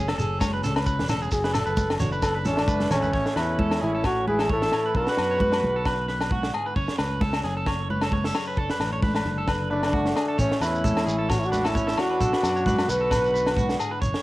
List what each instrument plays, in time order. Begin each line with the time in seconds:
Already playing: fingered electric bass F#1, steel-string acoustic guitar F#2 A3 C#4
0.08 clean electric guitar A4, snare, low agogo
0.18 fingered electric bass F#1, steel-string acoustic guitar G#4, clean electric guitar A4, muted conga, shekere
0.40 steel-string acoustic guitar C#3, clean electric guitar C#5, kick, snare, muted conga, high conga, low agogo, shekere
0.53 clean electric guitar B4
0.63 fingered electric bass C#2, steel-string acoustic guitar A3, clean electric guitar A4, snare, muted conga, shekere
0.76 clean electric guitar B4, snare, low agogo
0.86 steel-string acoustic guitar G#4, clean electric guitar B4, kick, shekere
0.99 fingered electric bass E1, snare
1.08 steel-string acoustic guitar C#4, clean electric guitar A4, snare, high conga, low agogo, shekere
1.22 clean electric guitar G#4, shekere
1.31 fingered electric bass F#1, steel-string acoustic guitar F#2 F#4, muted trumpet G#4, muted clean electric guitar stroke, kick, snare, muted conga, shekere
1.44 clean electric guitar B4, snare
1.53 steel-string acoustic guitar A3, clean electric guitar A4, muted trumpet A4, snare, low agogo, shekere
1.66 fingered electric bass F#1, clean electric guitar B4, shekere
1.77 muted steel-string acoustic guitar stroke, kick, snare, high conga, shekere
1.90 snare, low agogo
2.00 fingered electric bass F#1, steel-string acoustic guitar D4, muted trumpet F#4, clean electric guitar C#5, snare, muted conga, low conga, shekere
2.12 clean electric guitar B4, shekere
2.22 steel-string acoustic guitar F#2, muted trumpet A4, kick, snare, muted conga, low agogo, shekere
2.35 clean electric guitar B4
2.45 fingered electric bass A1, trumpet A3, steel-string acoustic guitar A3, muted trumpet D4, clean electric guitar A4, snare, muted conga, high conga, shekere
2.57 snare, low agogo
2.67 fingered electric bass F#1, steel-string acoustic guitar F#4, clean electric guitar B4, kick, high conga, shekere
2.80 snare, high conga
2.90 fingered electric bass G#1, trumpet A3, muted trumpet C#4, steel-string acoustic guitar D4, clean electric guitar C#5, snare, low conga, low agogo, shekere
3.03 clean electric guitar B4, low conga, shekere
3.13 fingered electric bass A1, steel-string acoustic guitar A2 C#4, clean electric guitar C#5, kick, snare, muted conga
3.26 snare
3.36 fingered electric bass E2, steel-string acoustic guitar A3, trumpet C#4, muted trumpet E4, clean electric guitar B4, snare, low agogo
3.59 steel-string acoustic guitar C#4, clean electric guitar A4, kick, high conga
3.71 snare, low agogo
3.81 fingered electric bass A1, steel-string acoustic guitar E3, muted trumpet E4, clean electric guitar G#4
3.86 trumpet C#4
3.95 clean electric guitar A4
4.04 trumpet C#4, muted trumpet F#4, clean electric guitar C#5, kick, snare, low agogo
4.27 steel-string acoustic guitar E2, trumpet E4, muted trumpet G#4, clean electric guitar B4, muted conga, high conga
4.39 clean electric guitar A4, snare, low agogo
4.50 steel-string acoustic guitar G#2, trumpet E4, muted trumpet A4, clean electric guitar C#5, kick, high conga
4.62 clean electric guitar A4, snare
4.72 steel-string acoustic guitar A2, clean electric guitar C#5, snare, muted conga, low agogo
4.86 clean electric guitar B4
4.95 fingered electric bass B1, steel-string acoustic guitar B2 D4, trumpet F#4, clean electric guitar A4, muted trumpet B4, kick, muted conga
5.07 clean electric guitar B4, snare
5.17 fingered electric bass F#2, steel-string acoustic guitar B3, snare, low agogo
5.31 clean electric guitar C#5
5.40 clean electric guitar B4, muted steel-string acoustic guitar stroke, kick, high conga
5.52 clean electric guitar B4, snare, low agogo
5.63 fingered electric bass B1, steel-string acoustic guitar D3, high conga
5.76 clean electric guitar A4
5.86 clean electric guitar B4, kick, snare, muted conga, low agogo
6.08 steel-string acoustic guitar F#2 B3, clean electric guitar B4, snare, muted conga
6.21 snare, low agogo
6.31 steel-string acoustic guitar A2, clean electric guitar F#4, kick, high conga
6.43 snare
6.54 steel-string acoustic guitar G#2, clean electric guitar G#4, low agogo
6.66 clean electric guitar B4
6.76 fingered electric bass F#1, steel-string acoustic guitar F#2 C#4, clean electric guitar C#5, kick, muted conga
6.88 snare
6.98 fingered electric bass C#2, steel-string acoustic guitar A3, clean electric guitar B4, snare, low agogo
7.21 steel-string acoustic guitar C#4, clean electric guitar A4, kick, snare, high conga
7.33 snare, low agogo
7.44 fingered electric bass F#1, steel-string acoustic guitar F#3, clean electric guitar G#4, snare
7.57 clean electric guitar A4
7.67 clean electric guitar C#5, kick, snare, muted conga, low agogo
7.90 steel-string acoustic guitar C#3 A3, clean electric guitar B4, high conga
8.01 clean electric guitar A4, snare, low agogo
8.12 steel-string acoustic guitar B3, clean electric guitar C#5, kick, high conga
8.24 steel-string acoustic guitar C#4, clean electric guitar A4, snare
8.35 steel-string acoustic guitar G#4, clean electric guitar C#5, snare, muted conga, low agogo
8.47 clean electric guitar B4
8.57 fingered electric bass F#1, steel-string acoustic guitar F#2 D4, clean electric guitar A4, kick, muted conga
8.70 clean electric guitar B4, snare
8.80 fingered electric bass A1, steel-string acoustic guitar A3, snare, low agogo
8.93 clean electric guitar C#5
9.02 steel-string acoustic guitar D4, clean electric guitar B4, kick, snare, high conga
9.15 clean electric guitar B4, snare, low agogo
9.25 fingered electric bass F#1, steel-string acoustic guitar D3, snare, high conga
9.38 clean electric guitar A4
9.48 clean electric guitar B4, kick, snare, low agogo
9.71 steel-string acoustic guitar F#2 A3, trumpet A3, muted trumpet D4, clean electric guitar B4, muted conga
9.83 snare, low agogo
9.93 steel-string acoustic guitar D4, clean electric guitar F#4, kick, high conga
10.06 snare
10.16 steel-string acoustic guitar F#4, clean electric guitar G#4, snare, muted conga, low agogo
10.28 clean electric guitar A4
10.38 fingered electric bass A1, steel-string acoustic guitar A2 C#4, trumpet A3, muted trumpet C#4, clean electric guitar C#5, kick, snare, muted conga, shekere
10.52 snare
10.61 fingered electric bass E2, steel-string acoustic guitar A3, trumpet C#4, muted trumpet E4, clean electric guitar B4, snare, low agogo, shekere
10.75 shekere
10.84 steel-string acoustic guitar C#4, clean electric guitar A4, kick, high conga, shekere
10.97 snare, low agogo, shekere
11.06 fingered electric bass A1, steel-string acoustic guitar E3, clean electric guitar G#4, shekere
11.19 clean electric guitar A4
11.29 trumpet C#4, muted trumpet F#4, clean electric guitar C#5, kick, snare, low agogo, shekere
11.38 trumpet C#4, muted trumpet E4
11.43 trumpet D4, muted trumpet F#4, shekere
11.51 steel-string acoustic guitar E2 A3, clean electric guitar B4, snare, high conga, shekere
11.64 trumpet C#4, muted trumpet E4, clean electric guitar A4, snare, low agogo, shekere
11.75 steel-string acoustic guitar C#4, clean electric guitar C#5, kick, high conga, shekere
11.87 clean electric guitar A4, snare, shekere
11.98 trumpet D4, steel-string acoustic guitar E4, muted trumpet F#4, clean electric guitar C#5, snare, muted conga, low agogo
12.10 clean electric guitar B4
12.20 fingered electric bass B1, steel-string acoustic guitar D4, clean electric guitar A4, kick, muted conga, shekere
12.33 clean electric guitar B4, snare
12.42 fingered electric bass F#2, steel-string acoustic guitar B3, snare, low agogo, shekere
12.56 clean electric guitar C#5, shekere
12.66 steel-string acoustic guitar D4, clean electric guitar B4, kick, snare, high conga, shekere
12.78 clean electric guitar B4, snare, low agogo, shekere
12.88 fingered electric bass B1, steel-string acoustic guitar D3, trumpet F#4, muted trumpet B4, high conga, shekere
13.01 clean electric guitar A4
13.11 clean electric guitar B4, kick, snare, muted conga, low agogo, shekere
13.25 shekere
13.34 steel-string acoustic guitar F#2 B3, clean electric guitar B4, muted conga, shekere
13.46 snare, low agogo
13.56 steel-string acoustic guitar A2, clean electric guitar F#4, kick, high conga, shekere
13.69 snare, shekere
13.79 steel-string acoustic guitar G#2, clean electric guitar G#4, muted conga, low agogo, shekere
13.91 clean electric guitar B4
14.01 fingered electric bass F#1, steel-string acoustic guitar F#2, clean electric guitar C#5, muted steel-string acoustic guitar stroke, kick, muted conga, shekere
14.14 snare